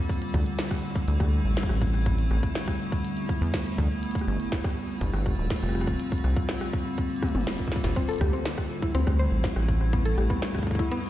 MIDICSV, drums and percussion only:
0, 0, Header, 1, 2, 480
1, 0, Start_track
1, 0, Key_signature, -1, "minor"
1, 0, Tempo, 491803
1, 93, Time_signature, 4, 2, 24, 8
1, 10832, End_track
2, 0, Start_track
2, 0, Title_t, "Drums"
2, 92, Note_on_c, 9, 36, 104
2, 93, Note_on_c, 9, 42, 71
2, 190, Note_off_c, 9, 36, 0
2, 190, Note_off_c, 9, 42, 0
2, 213, Note_on_c, 9, 42, 49
2, 310, Note_off_c, 9, 42, 0
2, 332, Note_on_c, 9, 36, 117
2, 333, Note_on_c, 9, 37, 51
2, 430, Note_off_c, 9, 36, 0
2, 431, Note_off_c, 9, 37, 0
2, 453, Note_on_c, 9, 42, 34
2, 550, Note_off_c, 9, 42, 0
2, 572, Note_on_c, 9, 38, 117
2, 572, Note_on_c, 9, 42, 74
2, 670, Note_off_c, 9, 38, 0
2, 670, Note_off_c, 9, 42, 0
2, 692, Note_on_c, 9, 36, 102
2, 693, Note_on_c, 9, 37, 73
2, 693, Note_on_c, 9, 42, 44
2, 733, Note_off_c, 9, 42, 0
2, 733, Note_on_c, 9, 42, 36
2, 773, Note_off_c, 9, 42, 0
2, 773, Note_on_c, 9, 42, 31
2, 790, Note_off_c, 9, 36, 0
2, 790, Note_off_c, 9, 37, 0
2, 871, Note_off_c, 9, 42, 0
2, 932, Note_on_c, 9, 36, 102
2, 1030, Note_off_c, 9, 36, 0
2, 1053, Note_on_c, 9, 42, 74
2, 1150, Note_off_c, 9, 42, 0
2, 1172, Note_on_c, 9, 36, 114
2, 1172, Note_on_c, 9, 37, 76
2, 1172, Note_on_c, 9, 42, 50
2, 1270, Note_off_c, 9, 36, 0
2, 1270, Note_off_c, 9, 37, 0
2, 1270, Note_off_c, 9, 42, 0
2, 1532, Note_on_c, 9, 38, 113
2, 1532, Note_on_c, 9, 42, 72
2, 1592, Note_on_c, 9, 36, 107
2, 1630, Note_off_c, 9, 38, 0
2, 1630, Note_off_c, 9, 42, 0
2, 1652, Note_on_c, 9, 37, 72
2, 1652, Note_on_c, 9, 42, 49
2, 1690, Note_off_c, 9, 36, 0
2, 1750, Note_off_c, 9, 37, 0
2, 1750, Note_off_c, 9, 42, 0
2, 1772, Note_on_c, 9, 36, 103
2, 1870, Note_off_c, 9, 36, 0
2, 1892, Note_on_c, 9, 37, 34
2, 1990, Note_off_c, 9, 37, 0
2, 2012, Note_on_c, 9, 36, 116
2, 2013, Note_on_c, 9, 42, 75
2, 2110, Note_off_c, 9, 36, 0
2, 2110, Note_off_c, 9, 42, 0
2, 2133, Note_on_c, 9, 42, 49
2, 2230, Note_off_c, 9, 42, 0
2, 2253, Note_on_c, 9, 37, 52
2, 2350, Note_off_c, 9, 37, 0
2, 2372, Note_on_c, 9, 36, 105
2, 2373, Note_on_c, 9, 42, 33
2, 2470, Note_off_c, 9, 36, 0
2, 2470, Note_off_c, 9, 42, 0
2, 2493, Note_on_c, 9, 38, 114
2, 2493, Note_on_c, 9, 42, 73
2, 2590, Note_off_c, 9, 38, 0
2, 2590, Note_off_c, 9, 42, 0
2, 2612, Note_on_c, 9, 36, 99
2, 2613, Note_on_c, 9, 37, 71
2, 2613, Note_on_c, 9, 42, 50
2, 2710, Note_off_c, 9, 36, 0
2, 2710, Note_off_c, 9, 37, 0
2, 2710, Note_off_c, 9, 42, 0
2, 2852, Note_on_c, 9, 36, 112
2, 2950, Note_off_c, 9, 36, 0
2, 2972, Note_on_c, 9, 42, 77
2, 3070, Note_off_c, 9, 42, 0
2, 3092, Note_on_c, 9, 42, 50
2, 3190, Note_off_c, 9, 42, 0
2, 3212, Note_on_c, 9, 36, 101
2, 3310, Note_off_c, 9, 36, 0
2, 3452, Note_on_c, 9, 36, 99
2, 3453, Note_on_c, 9, 38, 110
2, 3453, Note_on_c, 9, 42, 75
2, 3550, Note_off_c, 9, 36, 0
2, 3550, Note_off_c, 9, 38, 0
2, 3550, Note_off_c, 9, 42, 0
2, 3573, Note_on_c, 9, 42, 50
2, 3670, Note_off_c, 9, 42, 0
2, 3692, Note_on_c, 9, 36, 106
2, 3790, Note_off_c, 9, 36, 0
2, 3933, Note_on_c, 9, 42, 74
2, 4013, Note_off_c, 9, 42, 0
2, 4013, Note_on_c, 9, 42, 57
2, 4052, Note_on_c, 9, 36, 101
2, 4053, Note_off_c, 9, 42, 0
2, 4053, Note_on_c, 9, 42, 51
2, 4093, Note_off_c, 9, 42, 0
2, 4093, Note_on_c, 9, 42, 50
2, 4112, Note_on_c, 9, 37, 53
2, 4150, Note_off_c, 9, 36, 0
2, 4190, Note_off_c, 9, 42, 0
2, 4210, Note_off_c, 9, 37, 0
2, 4292, Note_on_c, 9, 42, 33
2, 4390, Note_off_c, 9, 42, 0
2, 4412, Note_on_c, 9, 36, 100
2, 4412, Note_on_c, 9, 38, 103
2, 4412, Note_on_c, 9, 42, 73
2, 4510, Note_off_c, 9, 36, 0
2, 4510, Note_off_c, 9, 38, 0
2, 4510, Note_off_c, 9, 42, 0
2, 4532, Note_on_c, 9, 37, 77
2, 4532, Note_on_c, 9, 42, 48
2, 4533, Note_on_c, 9, 36, 118
2, 4630, Note_off_c, 9, 36, 0
2, 4630, Note_off_c, 9, 37, 0
2, 4630, Note_off_c, 9, 42, 0
2, 4892, Note_on_c, 9, 36, 99
2, 4892, Note_on_c, 9, 42, 74
2, 4989, Note_off_c, 9, 42, 0
2, 4990, Note_off_c, 9, 36, 0
2, 5012, Note_on_c, 9, 37, 82
2, 5012, Note_on_c, 9, 42, 53
2, 5109, Note_off_c, 9, 37, 0
2, 5109, Note_off_c, 9, 42, 0
2, 5133, Note_on_c, 9, 36, 100
2, 5230, Note_off_c, 9, 36, 0
2, 5372, Note_on_c, 9, 38, 104
2, 5372, Note_on_c, 9, 42, 77
2, 5373, Note_on_c, 9, 36, 113
2, 5470, Note_off_c, 9, 36, 0
2, 5470, Note_off_c, 9, 38, 0
2, 5470, Note_off_c, 9, 42, 0
2, 5492, Note_on_c, 9, 37, 35
2, 5492, Note_on_c, 9, 42, 49
2, 5552, Note_off_c, 9, 37, 0
2, 5552, Note_on_c, 9, 37, 45
2, 5590, Note_off_c, 9, 42, 0
2, 5612, Note_off_c, 9, 37, 0
2, 5612, Note_on_c, 9, 37, 55
2, 5672, Note_off_c, 9, 37, 0
2, 5672, Note_on_c, 9, 37, 64
2, 5732, Note_off_c, 9, 37, 0
2, 5732, Note_on_c, 9, 37, 36
2, 5733, Note_on_c, 9, 36, 100
2, 5830, Note_off_c, 9, 36, 0
2, 5830, Note_off_c, 9, 37, 0
2, 5852, Note_on_c, 9, 42, 77
2, 5950, Note_off_c, 9, 42, 0
2, 5972, Note_on_c, 9, 42, 50
2, 5973, Note_on_c, 9, 36, 97
2, 6032, Note_off_c, 9, 42, 0
2, 6032, Note_on_c, 9, 42, 39
2, 6070, Note_off_c, 9, 36, 0
2, 6092, Note_off_c, 9, 42, 0
2, 6092, Note_on_c, 9, 37, 56
2, 6092, Note_on_c, 9, 42, 34
2, 6152, Note_off_c, 9, 42, 0
2, 6152, Note_on_c, 9, 42, 28
2, 6190, Note_off_c, 9, 37, 0
2, 6212, Note_off_c, 9, 42, 0
2, 6212, Note_on_c, 9, 42, 36
2, 6213, Note_on_c, 9, 36, 115
2, 6310, Note_off_c, 9, 36, 0
2, 6310, Note_off_c, 9, 42, 0
2, 6332, Note_on_c, 9, 38, 112
2, 6332, Note_on_c, 9, 42, 77
2, 6429, Note_off_c, 9, 38, 0
2, 6429, Note_off_c, 9, 42, 0
2, 6452, Note_on_c, 9, 37, 80
2, 6452, Note_on_c, 9, 42, 53
2, 6550, Note_off_c, 9, 37, 0
2, 6550, Note_off_c, 9, 42, 0
2, 6572, Note_on_c, 9, 36, 96
2, 6670, Note_off_c, 9, 36, 0
2, 6811, Note_on_c, 9, 42, 85
2, 6812, Note_on_c, 9, 36, 96
2, 6909, Note_off_c, 9, 42, 0
2, 6910, Note_off_c, 9, 36, 0
2, 6932, Note_on_c, 9, 42, 23
2, 6992, Note_off_c, 9, 42, 0
2, 6992, Note_on_c, 9, 42, 32
2, 7052, Note_off_c, 9, 42, 0
2, 7052, Note_on_c, 9, 36, 111
2, 7052, Note_on_c, 9, 37, 67
2, 7052, Note_on_c, 9, 42, 38
2, 7052, Note_on_c, 9, 48, 62
2, 7111, Note_off_c, 9, 42, 0
2, 7111, Note_on_c, 9, 42, 46
2, 7149, Note_off_c, 9, 37, 0
2, 7149, Note_off_c, 9, 48, 0
2, 7150, Note_off_c, 9, 36, 0
2, 7171, Note_on_c, 9, 48, 57
2, 7209, Note_off_c, 9, 42, 0
2, 7232, Note_on_c, 9, 42, 34
2, 7269, Note_off_c, 9, 48, 0
2, 7291, Note_off_c, 9, 42, 0
2, 7291, Note_on_c, 9, 38, 116
2, 7291, Note_on_c, 9, 42, 78
2, 7389, Note_off_c, 9, 38, 0
2, 7389, Note_off_c, 9, 42, 0
2, 7412, Note_on_c, 9, 42, 52
2, 7413, Note_on_c, 9, 36, 44
2, 7493, Note_off_c, 9, 36, 0
2, 7493, Note_on_c, 9, 36, 62
2, 7509, Note_off_c, 9, 42, 0
2, 7532, Note_on_c, 9, 38, 71
2, 7572, Note_off_c, 9, 36, 0
2, 7572, Note_on_c, 9, 36, 79
2, 7629, Note_off_c, 9, 38, 0
2, 7652, Note_on_c, 9, 38, 80
2, 7652, Note_on_c, 9, 42, 36
2, 7653, Note_off_c, 9, 36, 0
2, 7653, Note_on_c, 9, 36, 95
2, 7750, Note_off_c, 9, 36, 0
2, 7750, Note_off_c, 9, 38, 0
2, 7750, Note_off_c, 9, 42, 0
2, 7772, Note_on_c, 9, 36, 108
2, 7772, Note_on_c, 9, 42, 82
2, 7869, Note_off_c, 9, 42, 0
2, 7870, Note_off_c, 9, 36, 0
2, 7892, Note_on_c, 9, 42, 24
2, 7916, Note_off_c, 9, 42, 0
2, 7916, Note_on_c, 9, 42, 30
2, 7940, Note_off_c, 9, 42, 0
2, 7940, Note_on_c, 9, 42, 34
2, 7964, Note_off_c, 9, 42, 0
2, 7964, Note_on_c, 9, 42, 39
2, 7989, Note_off_c, 9, 42, 0
2, 7989, Note_on_c, 9, 42, 47
2, 8012, Note_on_c, 9, 37, 58
2, 8013, Note_on_c, 9, 36, 122
2, 8086, Note_off_c, 9, 42, 0
2, 8110, Note_off_c, 9, 36, 0
2, 8110, Note_off_c, 9, 37, 0
2, 8132, Note_on_c, 9, 42, 35
2, 8230, Note_off_c, 9, 42, 0
2, 8252, Note_on_c, 9, 38, 116
2, 8252, Note_on_c, 9, 42, 77
2, 8312, Note_off_c, 9, 42, 0
2, 8312, Note_on_c, 9, 42, 52
2, 8350, Note_off_c, 9, 38, 0
2, 8372, Note_on_c, 9, 37, 79
2, 8373, Note_on_c, 9, 36, 105
2, 8410, Note_off_c, 9, 42, 0
2, 8469, Note_off_c, 9, 37, 0
2, 8470, Note_off_c, 9, 36, 0
2, 8613, Note_on_c, 9, 36, 101
2, 8710, Note_off_c, 9, 36, 0
2, 8732, Note_on_c, 9, 42, 82
2, 8830, Note_off_c, 9, 42, 0
2, 8852, Note_on_c, 9, 37, 83
2, 8852, Note_on_c, 9, 42, 55
2, 8853, Note_on_c, 9, 36, 113
2, 8950, Note_off_c, 9, 36, 0
2, 8950, Note_off_c, 9, 37, 0
2, 8950, Note_off_c, 9, 42, 0
2, 9212, Note_on_c, 9, 36, 105
2, 9213, Note_on_c, 9, 38, 113
2, 9213, Note_on_c, 9, 42, 79
2, 9310, Note_off_c, 9, 36, 0
2, 9310, Note_off_c, 9, 38, 0
2, 9310, Note_off_c, 9, 42, 0
2, 9333, Note_on_c, 9, 37, 82
2, 9333, Note_on_c, 9, 42, 54
2, 9430, Note_off_c, 9, 37, 0
2, 9430, Note_off_c, 9, 42, 0
2, 9453, Note_on_c, 9, 36, 101
2, 9550, Note_off_c, 9, 36, 0
2, 9573, Note_on_c, 9, 37, 37
2, 9671, Note_off_c, 9, 37, 0
2, 9693, Note_on_c, 9, 36, 127
2, 9693, Note_on_c, 9, 42, 84
2, 9790, Note_off_c, 9, 36, 0
2, 9790, Note_off_c, 9, 42, 0
2, 9812, Note_on_c, 9, 42, 53
2, 9910, Note_off_c, 9, 42, 0
2, 9933, Note_on_c, 9, 37, 54
2, 10030, Note_off_c, 9, 37, 0
2, 10053, Note_on_c, 9, 36, 109
2, 10053, Note_on_c, 9, 42, 38
2, 10150, Note_off_c, 9, 36, 0
2, 10151, Note_off_c, 9, 42, 0
2, 10173, Note_on_c, 9, 38, 117
2, 10173, Note_on_c, 9, 42, 77
2, 10270, Note_off_c, 9, 38, 0
2, 10270, Note_off_c, 9, 42, 0
2, 10293, Note_on_c, 9, 36, 48
2, 10293, Note_on_c, 9, 37, 78
2, 10293, Note_on_c, 9, 42, 53
2, 10333, Note_off_c, 9, 36, 0
2, 10333, Note_on_c, 9, 36, 57
2, 10373, Note_off_c, 9, 36, 0
2, 10373, Note_on_c, 9, 36, 66
2, 10391, Note_off_c, 9, 37, 0
2, 10391, Note_off_c, 9, 42, 0
2, 10413, Note_off_c, 9, 36, 0
2, 10413, Note_on_c, 9, 36, 74
2, 10453, Note_off_c, 9, 36, 0
2, 10453, Note_on_c, 9, 36, 83
2, 10493, Note_off_c, 9, 36, 0
2, 10493, Note_on_c, 9, 36, 91
2, 10533, Note_off_c, 9, 36, 0
2, 10533, Note_on_c, 9, 36, 118
2, 10630, Note_off_c, 9, 36, 0
2, 10653, Note_on_c, 9, 42, 85
2, 10750, Note_off_c, 9, 42, 0
2, 10773, Note_on_c, 9, 42, 24
2, 10797, Note_off_c, 9, 42, 0
2, 10797, Note_on_c, 9, 42, 32
2, 10832, Note_off_c, 9, 42, 0
2, 10832, End_track
0, 0, End_of_file